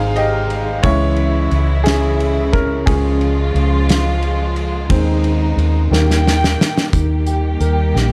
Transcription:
0.00 0.80 G#1 medium
0.00 0.83 C3 medium
0.00 0.80 D#3 medium
0.00 0.86 D#3 medium
0.00 0.85 G#3 soft
0.00 2.83 G#3 medium
0.00 0.86 C4 medium
0.00 0.83 D#4 medium
0.00 0.86 D#4 medium
0.00 0.14 G#4 medium
0.00 0.86 C5 medium
0.00 0.17 F5 medium
0.16 0.81 G4 medium
0.16 0.86 D#5 loud
0.16 ride soft
0.50 ride soft
0.83 1.47 C#2 loud
0.83 4.86 C#3 medium
0.83 2.84 E3 medium
0.83 1.81 E3 soft
0.83 1.82 G#3 medium
0.83 1.82 C#4 medium
0.83 2.84 E4 medium
0.83 1.57 E4 medium
0.83 1.55 C#5 medium
0.83 kick loud
0.83 ride medium
1.16 ride soft
1.51 2.83 C#2 loud
1.51 ride soft
1.84 2.49 C#4 medium
1.84 2.48 G#4 medium
1.84 snare loud
1.84 ride medium
2.20 ride soft
2.53 2.85 C#4 medium
2.53 2.88 A#4 medium
2.53 kick medium
2.53 ride soft
2.86 3.51 C#2 loud
2.86 3.32 F3 medium
2.86 4.88 F3 medium
2.86 5.88 G#3 medium
2.86 3.32 G#3 medium
2.86 6.22 C#4 medium
2.86 4.88 F4 medium
2.86 6.21 G#4 medium
2.86 kick loud
2.86 ride medium
3.21 ride soft
3.55 4.86 C#2 loud
3.55 ride soft
3.89 snare loud
3.89 ride medium
4.22 ride soft
4.56 ride soft
4.89 5.54 D#2 loud
4.89 5.87 D#3 medium
4.89 5.91 D#3 medium
4.89 5.87 G#3 soft
4.89 5.88 C4 medium
4.89 5.91 D#4 medium
4.89 kick loud
4.89 ride medium
5.24 ride soft
5.57 5.89 D#2 medium
5.57 ride soft
5.91 6.55 D#2 loud
5.91 6.89 D#3 soft
5.91 6.91 D#3 medium
5.91 6.89 A#3 medium
5.91 6.91 A#3 medium
5.91 6.89 G4 soft
5.91 6.92 G5 medium
5.91 snare medium
6.11 snare soft
6.27 snare medium
6.44 snare medium
6.61 snare loud
6.78 snare medium
6.92 7.57 D#2 medium
6.92 8.12 D#3 medium
6.92 8.12 G3 medium
6.92 8.12 A#3 medium
6.92 8.12 G4 medium
6.92 kick loud
6.92 closed hi-hat medium
7.26 7.93 G4 soft
7.26 closed hi-hat soft
7.60 7.92 D#2 medium
7.60 8.12 A#4 soft
7.60 closed hi-hat soft
7.94 8.12 A#1 medium
7.94 8.12 G4 soft
7.94 snare soft

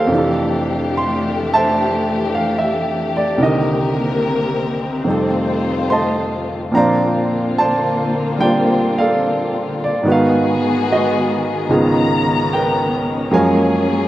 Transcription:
0.00 0.13 D#2 soft
0.00 0.10 D#3 soft
0.00 0.11 C#4 soft
0.00 0.12 F4 soft
0.00 0.12 G4 soft
0.00 5.00 G4 medium
0.00 0.16 A4 medium
0.00 0.12 A#4 medium
0.00 1.47 C5 soft
0.00 0.12 C#5 soft
0.00 0.97 F5 medium
0.00 0.13 G5 medium
0.07 3.38 F2 soft
0.07 3.38 C3 soft
0.07 3.36 E3 medium
0.07 3.36 A3 medium
0.07 3.36 D4 medium
0.12 3.40 E3 soft
0.12 3.41 D4 soft
0.16 3.42 G4 soft
0.16 3.43 A4 soft
0.97 1.53 C6 medium
1.54 3.13 C5 medium
1.54 2.57 E5 medium
1.54 2.36 A5 medium
2.35 2.60 F5 medium
2.59 3.16 E5 medium
3.17 3.39 D5 medium
3.38 5.04 C2 soft
3.38 5.03 C3 soft
3.38 5.04 C3 medium
3.38 5.06 D#3 soft
3.38 5.04 A#3 medium
3.38 6.69 C4 medium
3.38 5.04 A#4 medium
3.42 5.06 D3 soft
3.42 5.88 G4 soft
3.42 5.07 A#4 medium
3.42 5.87 D#5 medium
5.04 6.72 F2 soft
5.04 6.72 C3 soft
5.04 6.72 D#3 medium
5.04 6.73 G3 soft
5.04 6.71 A3 soft
5.04 6.74 D#4 soft
5.04 6.72 F4 soft
5.04 6.71 C5 medium
5.09 6.75 A4 soft
5.90 6.70 D#5 soft
5.90 6.71 A5 soft
5.90 6.76 C6 medium
6.71 10.04 A#2 medium
6.71 10.04 F3 soft
6.71 10.05 C4 soft
6.71 8.38 D4 soft
6.71 10.02 F4 medium
6.71 7.53 A#5 medium
6.76 10.03 D3 medium
6.76 10.03 A#3 medium
6.76 10.03 C4 medium
6.76 7.59 C5 medium
6.76 7.58 D5 medium
6.76 8.38 F5 medium
7.58 8.41 C5 medium
7.58 8.40 D5 medium
7.58 8.37 A5 medium
8.38 10.04 G3 soft
8.38 10.06 A#3 soft
8.38 10.05 D4 soft
8.38 10.05 F4 soft
8.38 8.98 D5 medium
8.38 8.99 G5 medium
8.43 10.02 C5 medium
8.98 10.02 A4 medium
8.98 9.82 D5 medium
8.98 9.76 F5 medium
9.84 10.05 D5 medium
10.03 11.68 G#2 medium
10.03 11.69 D#3 soft
10.03 11.69 B3 soft
10.07 13.31 D#3 medium
10.07 11.70 G#3 medium
10.07 11.70 B3 medium
10.07 10.91 F#4 soft
10.07 11.69 F#4 medium
10.07 11.69 G#4 medium
10.07 10.10 B4 medium
10.07 10.90 B4 medium
10.12 10.93 F5 medium
10.92 11.68 F#4 soft
10.92 11.67 B4 soft
10.92 11.68 D#5 medium
11.69 13.32 C#2 medium
11.69 13.33 G#2 soft
11.69 13.33 D#3 soft
11.69 13.33 B3 soft
11.69 13.33 B3 medium
11.69 14.08 C#4 medium
11.69 13.33 F4 soft
11.69 13.33 G#4 medium
11.69 13.32 A#5 medium
12.53 13.30 A#4 soft
12.53 13.30 B4 soft
12.53 13.36 G5 medium
13.31 14.08 F#2 soft
13.31 14.08 F3 soft
13.31 14.08 F#3 soft
13.31 14.08 G#3 soft
13.31 14.08 G#3 medium
13.31 14.08 A#3 medium
13.31 14.08 G#4 medium
13.31 14.08 A#4 medium
13.31 14.08 C#5 soft
13.31 14.08 G#5 medium
13.35 14.08 F5 medium

